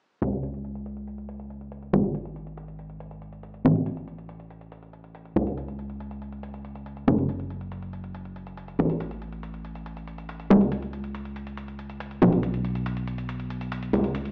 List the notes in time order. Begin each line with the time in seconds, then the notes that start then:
0.22 C#2, closed hi-hat
0.32 closed hi-hat
0.43 closed hi-hat
0.54 closed hi-hat
0.65 closed hi-hat
0.75 closed hi-hat
0.86 closed hi-hat
0.97 closed hi-hat
1.07 closed hi-hat
1.18 closed hi-hat
1.29 closed hi-hat
1.40 closed hi-hat
1.50 closed hi-hat
1.61 closed hi-hat
1.72 closed hi-hat
1.82 closed hi-hat
1.93 G#1, closed hi-hat
2.04 closed hi-hat
2.15 closed hi-hat
2.25 closed hi-hat
2.36 closed hi-hat
2.47 closed hi-hat
2.57 closed hi-hat
2.68 closed hi-hat
2.79 closed hi-hat
2.90 closed hi-hat
3.00 closed hi-hat
3.11 closed hi-hat
3.22 closed hi-hat
3.33 closed hi-hat
3.43 closed hi-hat
3.54 closed hi-hat
3.65 A1, closed hi-hat
3.75 closed hi-hat
3.86 closed hi-hat
3.97 closed hi-hat
4.08 closed hi-hat
4.18 closed hi-hat
4.29 closed hi-hat
4.40 closed hi-hat
4.50 closed hi-hat
4.61 closed hi-hat
4.72 closed hi-hat
4.83 closed hi-hat
4.93 closed hi-hat
5.04 closed hi-hat
5.15 closed hi-hat
5.25 closed hi-hat
5.36 C#2, closed hi-hat
5.47 closed hi-hat
5.58 closed hi-hat
5.68 closed hi-hat
5.79 closed hi-hat
5.90 closed hi-hat
6.00 closed hi-hat
6.11 closed hi-hat
6.22 closed hi-hat
6.32 closed hi-hat
6.43 closed hi-hat
6.54 closed hi-hat
6.65 closed hi-hat
6.75 closed hi-hat
6.86 closed hi-hat
6.97 closed hi-hat
7.08 F#1, closed hi-hat
7.18 closed hi-hat
7.29 closed hi-hat
7.40 closed hi-hat
7.50 closed hi-hat
7.61 closed hi-hat
7.72 closed hi-hat
7.82 closed hi-hat
7.93 closed hi-hat
8.04 closed hi-hat
8.15 closed hi-hat
8.25 closed hi-hat
8.36 closed hi-hat
8.47 closed hi-hat
8.57 closed hi-hat
8.68 closed hi-hat
8.79 A1, closed hi-hat
8.90 closed hi-hat
9.00 closed hi-hat
9.11 closed hi-hat
9.22 closed hi-hat
9.32 closed hi-hat
9.43 closed hi-hat
9.54 closed hi-hat
9.65 closed hi-hat
9.75 closed hi-hat
9.86 closed hi-hat
9.97 closed hi-hat
10.07 closed hi-hat
10.18 closed hi-hat
10.29 closed hi-hat
10.40 closed hi-hat
10.50 C#2, closed hi-hat
10.61 closed hi-hat
10.72 closed hi-hat
10.82 closed hi-hat
10.93 closed hi-hat
11.04 closed hi-hat
11.15 closed hi-hat
11.25 closed hi-hat
11.36 closed hi-hat
11.47 closed hi-hat
11.57 closed hi-hat
11.68 closed hi-hat
11.79 closed hi-hat
11.90 closed hi-hat
12.00 closed hi-hat
12.11 closed hi-hat
12.22 B1, closed hi-hat
12.32 closed hi-hat
12.43 closed hi-hat
12.54 closed hi-hat
12.65 closed hi-hat
12.75 closed hi-hat
12.86 closed hi-hat
12.97 closed hi-hat
13.07 closed hi-hat
13.18 closed hi-hat
13.29 closed hi-hat
13.40 closed hi-hat
13.50 closed hi-hat
13.61 closed hi-hat
13.72 closed hi-hat
13.83 closed hi-hat
13.93 C#2, closed hi-hat
14.04 closed hi-hat
14.15 closed hi-hat
14.25 closed hi-hat